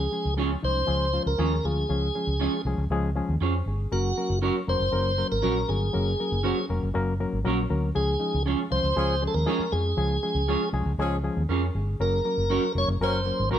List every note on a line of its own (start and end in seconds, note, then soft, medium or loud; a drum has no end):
0.00 0.34 G#4 loud
0.12 0.30 F3 medium
0.12 0.31 G#3 medium
0.12 0.31 C#4 medium
0.12 0.31 G#4 medium
0.25 0.55 C#2 medium
0.36 0.55 F3 medium
0.36 0.55 G#3 medium
0.36 0.56 C#4 medium
0.36 0.49 C#4 medium
0.36 0.50 F4 medium
0.36 0.56 G#4 medium
0.36 0.50 G#4 medium
0.36 0.50 C#5 medium
0.62 0.83 C2 medium
0.62 0.81 F3 medium
0.62 0.81 G#3 medium
0.62 0.81 C#4 medium
0.62 0.81 D#4 medium
0.62 1.23 C5 loud
0.87 1.18 C#2 medium
0.87 1.06 F3 medium
0.87 1.06 G#3 medium
0.87 1.06 C#4 medium
0.87 1.06 G#4 medium
1.13 1.32 F3 medium
1.13 1.32 G#3 medium
1.13 1.32 C#4 medium
1.13 1.32 F4 medium
1.26 1.36 C#2 medium
1.26 1.65 A#4 medium
1.38 1.58 D#2 medium
1.38 1.57 F3 medium
1.38 1.57 G#3 medium
1.38 1.57 C#4 medium
1.38 1.50 C#4 medium
1.38 1.51 F4 medium
1.38 1.57 G#4 loud
1.38 1.51 G#4 medium
1.38 1.51 C#5 medium
1.64 1.84 D2 medium
1.64 1.83 F3 medium
1.64 1.83 G#3 medium
1.64 1.83 C#4 medium
1.64 1.83 F4 medium
1.64 2.62 G#4 medium
1.89 2.09 C#2 loud
1.89 2.08 F3 medium
1.89 2.08 G#3 medium
1.89 2.08 C#4 medium
1.89 2.08 G#4 medium
2.15 2.33 F3 medium
2.15 2.33 G#3 medium
2.15 2.33 C#4 medium
2.15 2.33 G#4 medium
2.27 2.47 C#2 medium
2.40 2.59 F3 medium
2.40 2.59 G#3 medium
2.40 2.51 C#4 medium
2.40 2.59 C#4 medium
2.40 2.52 F4 medium
2.40 2.52 G#4 medium
2.40 2.59 G#4 medium
2.40 2.53 C#5 medium
2.65 2.75 C2 loud
2.65 2.84 F3 medium
2.65 2.84 G#3 medium
2.65 2.84 C#4 medium
2.65 2.84 G#4 medium
2.78 2.88 C#2 medium
2.90 3.20 C#2 loud
2.90 3.09 F3 loud
2.90 3.09 G#3 loud
2.90 3.10 C#4 medium
2.90 3.10 G#4 loud
3.16 3.34 F3 medium
3.16 3.34 G#3 medium
3.16 3.34 C#4 medium
3.16 3.35 G#4 loud
3.29 3.38 D#2 medium
3.41 3.61 F2 medium
3.41 3.53 C#4 medium
3.41 3.53 F4 medium
3.41 3.53 G#4 medium
3.41 3.66 C5 medium
3.41 3.54 C#5 medium
3.66 3.86 G1 medium
3.66 4.15 G#4 medium
3.92 4.11 F#1 loud
3.92 4.10 F#3 medium
3.92 4.10 A#3 medium
3.92 4.10 C#4 medium
3.92 4.39 F#4 loud
3.92 4.10 A#4 loud
4.17 4.36 F#3 medium
4.17 4.36 A#3 medium
4.17 4.36 C#4 medium
4.17 4.36 A#4 medium
4.30 4.49 F#1 medium
4.42 4.60 F#3 medium
4.42 4.61 A#3 medium
4.42 4.54 C#4 medium
4.42 4.61 C#4 medium
4.42 4.54 F#4 medium
4.42 4.61 A#4 medium
4.42 4.54 A#4 medium
4.42 4.55 C#5 loud
4.67 4.77 F1 medium
4.67 4.86 F#3 medium
4.67 4.86 A#3 medium
4.67 4.86 C#4 medium
4.67 4.86 A#4 medium
4.67 5.27 C5 loud
4.80 4.90 F#1 medium
4.92 5.22 F#1 medium
4.92 5.11 F#3 medium
4.92 5.11 A#3 medium
4.92 5.11 C#4 medium
4.92 5.11 A#4 medium
5.18 5.37 F#3 medium
5.18 5.37 A#3 medium
5.18 5.36 C#4 medium
5.18 5.36 A#4 medium
5.32 5.41 G#1 medium
5.32 5.70 A#4 loud
5.42 5.63 A#1 medium
5.42 5.62 F#3 medium
5.42 5.62 A#3 medium
5.42 5.54 C#4 medium
5.42 5.62 C#4 medium
5.42 5.55 F#4 medium
5.42 5.62 A#4 medium
5.42 5.55 A#4 medium
5.42 5.55 C#5 medium
5.68 5.89 G1 medium
5.68 5.87 F#3 medium
5.68 5.87 A#3 medium
5.68 5.87 C#4 medium
5.68 6.66 G#4 medium
5.68 5.87 A#4 medium
5.93 6.14 F#1 loud
5.93 6.12 F#3 medium
5.93 6.12 A#3 medium
5.93 6.12 C#4 medium
5.93 6.12 A#4 medium
6.20 6.38 F#3 medium
6.20 6.38 A#3 medium
6.20 6.38 C#4 medium
6.20 6.38 A#4 medium
6.32 6.51 F#1 medium
6.43 6.63 F#3 medium
6.43 6.63 A#3 medium
6.43 6.55 C#4 loud
6.43 6.63 C#4 medium
6.43 6.56 F#4 medium
6.43 6.56 A#4 medium
6.43 6.63 C5 medium
6.43 6.57 C#5 medium
6.69 6.79 F1 medium
6.69 6.88 F#3 medium
6.69 6.88 A#3 medium
6.69 6.88 C#4 medium
6.69 6.88 A#4 medium
6.83 6.92 F#1 medium
6.94 7.25 F#1 medium
6.94 7.13 F#3 loud
6.94 7.13 A#3 loud
6.94 7.13 C#4 medium
6.94 7.13 A#4 loud
7.20 7.39 F#3 medium
7.20 7.39 A#3 medium
7.20 7.39 C#4 medium
7.20 7.39 A#4 loud
7.33 7.43 G#1 medium
7.45 7.65 A#1 medium
7.45 7.63 F#3 loud
7.45 7.64 A#3 medium
7.45 7.64 C#4 medium
7.45 7.57 C#4 medium
7.45 7.57 F#4 medium
7.45 7.64 A#4 loud
7.45 7.58 A#4 medium
7.45 7.58 C#5 medium
7.70 7.90 D2 medium
7.70 7.89 F#3 medium
7.70 7.89 A#3 medium
7.70 7.89 C#4 medium
7.70 7.89 A#4 medium
7.95 8.15 C#2 loud
7.95 8.14 F3 medium
7.95 8.14 G#3 medium
7.95 8.14 C#4 medium
7.95 8.14 G#4 medium
7.95 8.43 G#4 loud
8.20 8.39 F3 medium
8.20 8.39 G#3 medium
8.20 8.39 C#4 medium
8.20 8.39 D#4 medium
8.34 8.54 C#2 medium
8.46 8.65 F3 medium
8.46 8.64 G#3 medium
8.46 8.64 C#4 medium
8.46 8.58 C#4 medium
8.46 8.58 F4 medium
8.46 8.65 G#4 medium
8.46 8.59 G#4 medium
8.46 8.59 C#5 medium
8.71 8.81 C2 medium
8.71 8.90 F3 medium
8.71 8.90 G#3 medium
8.71 8.90 C#4 medium
8.71 8.90 F4 medium
8.71 9.24 C5 loud
8.84 8.94 C#2 medium
8.96 9.26 C#2 medium
8.96 9.12 F3 medium
8.96 9.15 F3 medium
8.96 9.15 G#3 medium
8.96 9.12 C#4 medium
8.96 9.15 C#4 medium
8.96 9.12 G#4 loud
8.96 9.15 G#4 loud
9.22 9.40 F3 medium
9.22 9.41 G#3 medium
9.22 9.40 C#4 medium
9.22 9.40 G#4 medium
9.27 9.34 A4 medium
9.34 9.44 D#2 medium
9.34 9.73 A#4 medium
9.46 9.65 F3 medium
9.46 9.65 G#3 medium
9.46 9.65 C#4 medium
9.46 9.59 C#4 medium
9.46 9.59 F4 loud
9.46 9.65 G#4 loud
9.46 9.59 G#4 loud
9.46 9.60 C#5 loud
9.59 muted fingered electric bass stroke soft
9.72 9.92 F2 medium
9.72 9.91 F3 medium
9.72 9.91 G#3 medium
9.72 9.91 C#4 medium
9.72 10.69 G#4 medium
9.72 9.91 G#4 medium
9.97 10.17 C#2 loud
9.97 10.16 F3 medium
9.97 10.16 G#3 medium
9.97 10.16 C#4 medium
9.97 10.16 G#4 loud
10.23 10.42 F3 medium
10.23 10.42 G#3 medium
10.23 10.42 C#4 medium
10.23 10.42 G#4 medium
10.35 10.55 C#2 medium
10.48 10.67 F3 medium
10.48 10.67 G#3 medium
10.48 10.60 C#4 medium
10.48 10.67 C#4 medium
10.48 10.60 F4 medium
10.48 10.67 G#4 medium
10.48 10.61 G#4 medium
10.48 10.61 C#5 medium
10.73 10.83 C2 medium
10.73 10.92 F3 medium
10.73 10.92 G#3 medium
10.73 10.92 C#4 medium
10.73 10.92 G#4 loud
10.86 10.96 C#2 loud
10.98 11.28 C#2 medium
10.98 11.15 F3 medium
10.98 11.18 F3 loud
10.98 11.18 G#3 loud
10.98 11.15 C#4 medium
10.98 11.18 C#4 loud
10.98 11.15 G#4 loud
10.98 11.18 G#4 loud
11.24 11.42 F3 medium
11.24 11.43 G#3 medium
11.24 11.43 C#4 medium
11.24 11.43 G#4 medium
11.37 11.47 D#2 medium
11.49 11.69 F2 medium
11.49 11.61 C#4 medium
11.49 11.62 F4 medium
11.49 11.62 G#4 medium
11.49 11.73 A#4 medium
11.49 11.62 C#5 loud
11.75 11.94 G1 medium
11.75 12.23 G#4 medium
12.00 12.19 F#1 medium
12.00 12.18 F#3 medium
12.00 12.19 A#3 medium
12.00 12.19 C#4 medium
12.00 12.19 A#4 loud
12.00 12.72 A#4 medium
12.25 12.43 F#3 medium
12.25 12.44 A#3 medium
12.25 12.44 C#4 medium
12.25 12.44 A#4 medium
12.38 12.57 F#1 medium
12.50 12.69 F#3 medium
12.50 12.69 A#3 medium
12.50 12.62 C#4 medium
12.50 12.69 C#4 medium
12.50 12.62 F#4 medium
12.50 12.69 A#4 medium
12.50 12.63 A#4 medium
12.50 12.63 C#5 loud
12.75 12.85 F1 medium
12.75 12.94 F#3 medium
12.75 12.94 A#3 medium
12.75 12.94 C#4 medium
12.75 12.94 A#4 medium
12.75 12.89 C#5 loud
12.88 12.98 F#1 medium
13.01 13.30 F#1 medium
13.01 13.19 F#3 medium
13.01 13.17 F#3 medium
13.01 13.20 A#3 medium
13.01 13.17 C#4 medium
13.01 13.20 C#4 medium
13.01 13.20 A#4 loud
13.01 13.18 A#4 loud
13.01 13.49 C5 loud
13.25 13.44 F#3 medium
13.25 13.44 A#3 medium
13.25 13.44 C#4 medium
13.25 13.44 A#4 medium
13.40 13.49 G#1 medium
13.51 13.59 A#1 medium
13.51 13.59 F#3 medium
13.51 13.59 A#3 medium
13.51 13.59 C#4 medium
13.51 13.59 F#4 medium
13.51 13.59 A#4 loud
13.51 13.59 A#4 medium
13.51 13.59 C#5 loud